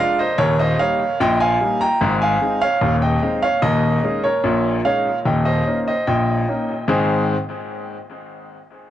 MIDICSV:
0, 0, Header, 1, 2, 480
1, 0, Start_track
1, 0, Key_signature, -4, "major"
1, 0, Tempo, 813008
1, 231, Time_signature, 2, 2, 24, 8
1, 5255, End_track
2, 0, Start_track
2, 0, Title_t, "Grand piano"
2, 0, Program_c, 0, 0
2, 0, Note_on_c, 0, 56, 63
2, 0, Note_on_c, 0, 62, 68
2, 0, Note_on_c, 0, 65, 74
2, 0, Note_on_c, 0, 74, 88
2, 0, Note_on_c, 0, 77, 125
2, 104, Note_off_c, 0, 74, 0
2, 110, Note_off_c, 0, 77, 0
2, 113, Note_on_c, 0, 75, 104
2, 120, Note_off_c, 0, 56, 0
2, 120, Note_on_c, 0, 72, 90
2, 122, Note_off_c, 0, 62, 0
2, 123, Note_off_c, 0, 65, 0
2, 225, Note_on_c, 0, 73, 127
2, 227, Note_off_c, 0, 72, 0
2, 228, Note_on_c, 0, 27, 97
2, 228, Note_on_c, 0, 39, 116
2, 231, Note_off_c, 0, 75, 0
2, 233, Note_on_c, 0, 70, 92
2, 343, Note_off_c, 0, 70, 0
2, 347, Note_off_c, 0, 73, 0
2, 351, Note_on_c, 0, 75, 108
2, 359, Note_on_c, 0, 72, 89
2, 432, Note_off_c, 0, 27, 0
2, 432, Note_off_c, 0, 39, 0
2, 466, Note_off_c, 0, 72, 0
2, 467, Note_on_c, 0, 55, 60
2, 469, Note_on_c, 0, 77, 106
2, 470, Note_off_c, 0, 75, 0
2, 470, Note_on_c, 0, 58, 61
2, 472, Note_on_c, 0, 63, 69
2, 474, Note_on_c, 0, 73, 86
2, 599, Note_off_c, 0, 55, 0
2, 602, Note_off_c, 0, 58, 0
2, 603, Note_off_c, 0, 63, 0
2, 694, Note_off_c, 0, 73, 0
2, 696, Note_off_c, 0, 77, 0
2, 711, Note_on_c, 0, 34, 104
2, 711, Note_on_c, 0, 46, 101
2, 713, Note_on_c, 0, 79, 127
2, 717, Note_on_c, 0, 75, 90
2, 824, Note_off_c, 0, 75, 0
2, 829, Note_on_c, 0, 80, 124
2, 830, Note_off_c, 0, 79, 0
2, 836, Note_on_c, 0, 77, 94
2, 913, Note_off_c, 0, 34, 0
2, 913, Note_off_c, 0, 46, 0
2, 951, Note_on_c, 0, 55, 60
2, 952, Note_on_c, 0, 58, 57
2, 956, Note_on_c, 0, 63, 63
2, 1055, Note_off_c, 0, 77, 0
2, 1056, Note_off_c, 0, 80, 0
2, 1067, Note_on_c, 0, 82, 119
2, 1074, Note_on_c, 0, 79, 89
2, 1082, Note_off_c, 0, 55, 0
2, 1082, Note_off_c, 0, 58, 0
2, 1085, Note_off_c, 0, 63, 0
2, 1186, Note_on_c, 0, 32, 97
2, 1188, Note_on_c, 0, 44, 110
2, 1259, Note_off_c, 0, 82, 0
2, 1293, Note_off_c, 0, 79, 0
2, 1308, Note_on_c, 0, 80, 110
2, 1316, Note_on_c, 0, 77, 89
2, 1390, Note_off_c, 0, 32, 0
2, 1391, Note_off_c, 0, 44, 0
2, 1427, Note_on_c, 0, 56, 61
2, 1429, Note_on_c, 0, 60, 56
2, 1434, Note_on_c, 0, 63, 67
2, 1534, Note_off_c, 0, 77, 0
2, 1535, Note_off_c, 0, 80, 0
2, 1544, Note_on_c, 0, 77, 114
2, 1552, Note_on_c, 0, 73, 79
2, 1558, Note_off_c, 0, 56, 0
2, 1560, Note_off_c, 0, 60, 0
2, 1563, Note_off_c, 0, 63, 0
2, 1661, Note_on_c, 0, 39, 100
2, 1663, Note_on_c, 0, 27, 94
2, 1736, Note_off_c, 0, 77, 0
2, 1772, Note_off_c, 0, 73, 0
2, 1783, Note_on_c, 0, 79, 100
2, 1788, Note_on_c, 0, 75, 74
2, 1866, Note_off_c, 0, 39, 0
2, 1867, Note_off_c, 0, 27, 0
2, 1904, Note_on_c, 0, 56, 57
2, 1907, Note_on_c, 0, 60, 66
2, 1911, Note_on_c, 0, 63, 59
2, 2009, Note_off_c, 0, 75, 0
2, 2011, Note_off_c, 0, 79, 0
2, 2022, Note_on_c, 0, 77, 108
2, 2029, Note_on_c, 0, 73, 78
2, 2036, Note_off_c, 0, 56, 0
2, 2038, Note_off_c, 0, 60, 0
2, 2040, Note_off_c, 0, 63, 0
2, 2138, Note_off_c, 0, 73, 0
2, 2138, Note_on_c, 0, 75, 110
2, 2139, Note_on_c, 0, 27, 91
2, 2139, Note_on_c, 0, 39, 103
2, 2143, Note_off_c, 0, 77, 0
2, 2146, Note_on_c, 0, 70, 80
2, 2344, Note_off_c, 0, 27, 0
2, 2345, Note_off_c, 0, 39, 0
2, 2384, Note_on_c, 0, 56, 60
2, 2386, Note_on_c, 0, 61, 54
2, 2388, Note_on_c, 0, 63, 67
2, 2481, Note_off_c, 0, 70, 0
2, 2482, Note_off_c, 0, 75, 0
2, 2501, Note_on_c, 0, 73, 97
2, 2507, Note_on_c, 0, 70, 70
2, 2516, Note_off_c, 0, 56, 0
2, 2517, Note_off_c, 0, 61, 0
2, 2519, Note_off_c, 0, 63, 0
2, 2620, Note_on_c, 0, 34, 85
2, 2620, Note_on_c, 0, 46, 93
2, 2790, Note_off_c, 0, 73, 0
2, 2825, Note_off_c, 0, 46, 0
2, 2826, Note_off_c, 0, 34, 0
2, 2842, Note_off_c, 0, 70, 0
2, 2863, Note_on_c, 0, 77, 97
2, 2864, Note_on_c, 0, 56, 55
2, 2867, Note_on_c, 0, 61, 60
2, 2867, Note_on_c, 0, 63, 63
2, 2871, Note_on_c, 0, 73, 76
2, 2996, Note_off_c, 0, 56, 0
2, 2998, Note_off_c, 0, 61, 0
2, 2998, Note_off_c, 0, 63, 0
2, 3055, Note_off_c, 0, 77, 0
2, 3091, Note_off_c, 0, 73, 0
2, 3103, Note_on_c, 0, 27, 86
2, 3103, Note_on_c, 0, 39, 91
2, 3103, Note_on_c, 0, 79, 89
2, 3108, Note_on_c, 0, 75, 72
2, 3210, Note_off_c, 0, 75, 0
2, 3219, Note_on_c, 0, 75, 95
2, 3223, Note_off_c, 0, 79, 0
2, 3226, Note_on_c, 0, 72, 70
2, 3308, Note_off_c, 0, 27, 0
2, 3308, Note_off_c, 0, 39, 0
2, 3348, Note_on_c, 0, 58, 54
2, 3349, Note_on_c, 0, 61, 53
2, 3353, Note_on_c, 0, 63, 54
2, 3414, Note_off_c, 0, 75, 0
2, 3449, Note_off_c, 0, 72, 0
2, 3469, Note_on_c, 0, 75, 91
2, 3477, Note_on_c, 0, 72, 61
2, 3479, Note_off_c, 0, 58, 0
2, 3480, Note_off_c, 0, 61, 0
2, 3483, Note_off_c, 0, 63, 0
2, 3583, Note_off_c, 0, 72, 0
2, 3585, Note_off_c, 0, 75, 0
2, 3585, Note_on_c, 0, 79, 93
2, 3587, Note_on_c, 0, 46, 81
2, 3589, Note_on_c, 0, 34, 75
2, 3593, Note_on_c, 0, 75, 70
2, 3793, Note_off_c, 0, 46, 0
2, 3794, Note_off_c, 0, 34, 0
2, 3828, Note_on_c, 0, 58, 50
2, 3831, Note_on_c, 0, 61, 50
2, 3835, Note_on_c, 0, 63, 59
2, 3961, Note_off_c, 0, 58, 0
2, 3963, Note_off_c, 0, 61, 0
2, 3966, Note_off_c, 0, 63, 0
2, 4047, Note_off_c, 0, 79, 0
2, 4051, Note_off_c, 0, 75, 0
2, 4062, Note_on_c, 0, 44, 108
2, 4063, Note_on_c, 0, 51, 89
2, 4066, Note_on_c, 0, 60, 87
2, 4067, Note_on_c, 0, 63, 93
2, 4069, Note_on_c, 0, 68, 98
2, 4070, Note_on_c, 0, 72, 94
2, 4070, Note_on_c, 0, 80, 71
2, 4333, Note_off_c, 0, 44, 0
2, 4334, Note_off_c, 0, 51, 0
2, 4335, Note_off_c, 0, 60, 0
2, 4336, Note_off_c, 0, 63, 0
2, 4337, Note_off_c, 0, 68, 0
2, 4338, Note_off_c, 0, 72, 0
2, 4338, Note_off_c, 0, 80, 0
2, 5255, End_track
0, 0, End_of_file